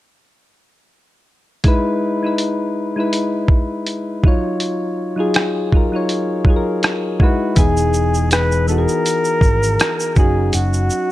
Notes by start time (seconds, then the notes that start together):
1.64 G#3 D#4 E4, kick, closed hi-hat
1.68 B4
2.23 G#3 D#4 E4 B4
2.38 closed hi-hat
2.96 G#3 D#4 E4 B4
3.13 closed hi-hat
3.48 kick
3.87 closed hi-hat
4.24 F#3 D#4 F4, kick
4.28 C#5
4.60 closed hi-hat
5.16 F#3 D#4 F4 G#4
5.34 cross-stick, closed hi-hat
5.72 F#3 D#4 F4, kick
5.77 A#4
5.92 F#3 D#4 F4
5.96 C#5
6.09 closed hi-hat
6.45 F#3 D#4 F4, kick
6.50 G#4
6.56 A#4
6.83 cross-stick, closed hi-hat
7.20 G#3 D#4 E4 F#4, kick
7.24 B4
7.56 E1 E3 B3 D#4 G#4, kick, closed hi-hat, shaker
7.60 G#4
7.77 shaker
7.93 shaker
8.14 shaker
8.31 B4, cross-stick, closed hi-hat, shaker
8.52 shaker
8.68 E3 B3 D#4 A#4, shaker
8.72 F#4
8.78 G#4
8.88 shaker
9.06 closed hi-hat, shaker
9.24 shaker
9.41 G#1, kick, shaker
9.63 shaker
9.80 cross-stick, closed hi-hat, shaker
10.00 shaker
10.16 F#1 F#3 C#4 D#4 G#4, kick, shaker
10.20 F#4
10.53 F#1 F#4, closed hi-hat, shaker
10.73 shaker
10.90 shaker